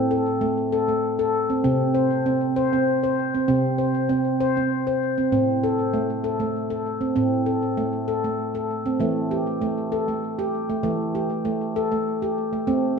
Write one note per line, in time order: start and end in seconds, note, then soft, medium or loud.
0.00 1.61 A2 medium
0.00 0.11 C4 medium
0.11 0.42 A4 medium
0.41 0.72 A3 medium
0.72 0.89 A4 medium
0.88 1.19 A3 medium
1.19 1.50 A4 medium
1.50 1.63 C4 medium
1.64 3.45 C3 medium
1.64 1.95 C4 medium
1.94 2.25 C5 medium
2.26 2.56 C4 medium
2.56 2.73 C5 medium
2.73 3.03 C4 medium
3.04 3.34 C5 medium
3.35 3.47 C4 medium
3.48 5.28 C3 medium
3.48 3.79 C4 medium
3.78 4.09 C5 medium
4.09 4.40 C4 medium
4.40 4.57 C5 medium
4.57 4.87 C4 medium
4.87 5.18 C5 medium
5.18 5.31 C4 medium
5.32 7.12 A2 medium
5.32 5.63 C4 medium
5.64 5.94 A4 medium
5.93 6.24 A3 medium
6.24 6.40 A4 medium
6.40 6.71 A3 medium
6.70 7.01 A4 medium
7.01 7.14 C4 medium
7.16 8.96 A2 medium
7.16 7.46 C4 medium
7.46 7.77 A4 medium
7.77 8.08 A3 medium
8.08 8.24 A4 medium
8.24 8.55 A3 medium
8.55 8.85 A4 medium
8.86 9.00 C4 medium
9.00 10.80 E3 medium
9.00 9.31 A3 medium
9.31 9.61 G4 medium
9.62 9.92 A3 medium
9.92 10.08 A4 medium
10.08 10.39 A3 medium
10.39 10.69 G4 medium
10.70 10.82 A3 medium
10.83 12.63 E3 medium
10.83 11.14 A3 medium
11.15 11.45 G4 medium
11.45 11.75 A3 medium
11.76 11.92 A4 medium
11.92 12.22 A3 medium
12.22 12.53 G4 medium
12.53 12.66 A3 medium
12.67 12.99 A3 medium
12.67 12.98 C4 medium